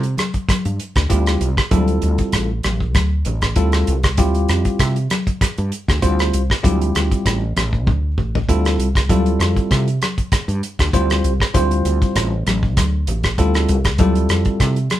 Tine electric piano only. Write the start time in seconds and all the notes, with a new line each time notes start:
1.10 G3 C4 E4 F4 G4
1.71 G3 C4 E4 F4 A4
3.56 G3 C4 E4 F4 A4
4.18 G3 C4 E4 F4 G4
6.02 G3 C4 E4 F4 C5
6.63 G3 C4 E4 F4 G4
8.49 G3 C4 E4 F4 A4
9.10 G3 C4 E4 F4 A4
10.94 G3 C4 E4 F4 C5
11.54 G3 C4 E4 F4 C5
13.39 G3 C4 E4 F4 A4
14.00 G3 C4 E4 F4 A4